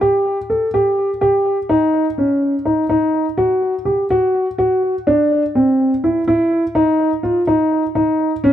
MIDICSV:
0, 0, Header, 1, 2, 480
1, 0, Start_track
1, 0, Tempo, 481155
1, 18, Time_signature, 7, 3, 24, 8
1, 8509, End_track
2, 0, Start_track
2, 0, Title_t, "Grand piano"
2, 0, Program_c, 0, 0
2, 12, Note_on_c, 0, 67, 84
2, 360, Note_off_c, 0, 67, 0
2, 496, Note_on_c, 0, 69, 65
2, 670, Note_off_c, 0, 69, 0
2, 738, Note_on_c, 0, 67, 78
2, 1084, Note_off_c, 0, 67, 0
2, 1210, Note_on_c, 0, 67, 80
2, 1559, Note_off_c, 0, 67, 0
2, 1690, Note_on_c, 0, 63, 81
2, 2040, Note_off_c, 0, 63, 0
2, 2174, Note_on_c, 0, 61, 59
2, 2523, Note_off_c, 0, 61, 0
2, 2648, Note_on_c, 0, 63, 66
2, 2825, Note_off_c, 0, 63, 0
2, 2888, Note_on_c, 0, 63, 74
2, 3238, Note_off_c, 0, 63, 0
2, 3368, Note_on_c, 0, 66, 84
2, 3718, Note_off_c, 0, 66, 0
2, 3845, Note_on_c, 0, 67, 64
2, 4023, Note_off_c, 0, 67, 0
2, 4095, Note_on_c, 0, 66, 83
2, 4442, Note_off_c, 0, 66, 0
2, 4573, Note_on_c, 0, 66, 81
2, 4921, Note_off_c, 0, 66, 0
2, 5058, Note_on_c, 0, 62, 85
2, 5404, Note_off_c, 0, 62, 0
2, 5540, Note_on_c, 0, 60, 68
2, 5885, Note_off_c, 0, 60, 0
2, 6024, Note_on_c, 0, 64, 69
2, 6194, Note_off_c, 0, 64, 0
2, 6261, Note_on_c, 0, 64, 84
2, 6606, Note_off_c, 0, 64, 0
2, 6734, Note_on_c, 0, 63, 84
2, 7081, Note_off_c, 0, 63, 0
2, 7215, Note_on_c, 0, 65, 68
2, 7388, Note_off_c, 0, 65, 0
2, 7456, Note_on_c, 0, 63, 81
2, 7802, Note_off_c, 0, 63, 0
2, 7934, Note_on_c, 0, 63, 79
2, 8280, Note_off_c, 0, 63, 0
2, 8417, Note_on_c, 0, 61, 87
2, 8509, Note_off_c, 0, 61, 0
2, 8509, End_track
0, 0, End_of_file